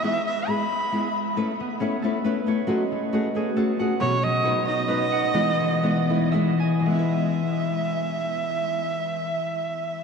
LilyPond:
<<
  \new Staff \with { instrumentName = "Erhu" } { \time 3/4 \key e \major \tempo 4 = 134 e''8 e''8 b''4. r8 | r2. | r2. | cis''8 dis''4 dis''4.~ |
dis''2 r4 | e''2.~ | e''2. | }
  \new Staff \with { instrumentName = "Harp" } { \time 3/4 \key e \major r2. | a8 b8 cis'8 a'8 b'8 cis''8 | gis8 a8 fis'8 gis'8 a'8 fis''8 | b,8 fis8 b8 dis'8 b'8 fis''8 |
e8 gis8 b8 e'8 e''8 gis''8 | <gis b e'>2.~ | <gis b e'>2. | }
  \new Staff \with { instrumentName = "Nylon-string guitar" } { \time 3/4 \key e \major <e gis b e' gis'>8 r8 <gis b e' gis'>8 r8 <gis b e' gis'>8 r8 | <a cis' e' b'>8 r8 <a cis' e' b'>8 <a cis' e' b'>8 <a cis' e' b'>8 <a cis' e' b'>8 | <fis a cis' fis' gis'>8 r8 <a cis' fis' gis'>8 <a cis' fis' gis'>8 <a cis' fis' gis'>8 <a cis' fis' gis'>8 | <b, e fis b fis' b'>8 r8 <fis b dis' b'>8 r8 <fis b dis' b'>8 r8 |
<e gis b e' b'>8 r8 <gis b e' b'>8 <gis b e' b'>8 <gis b e' b'>8 r8 | <e gis b e' b'>2.~ | <e gis b e' b'>2. | }
>>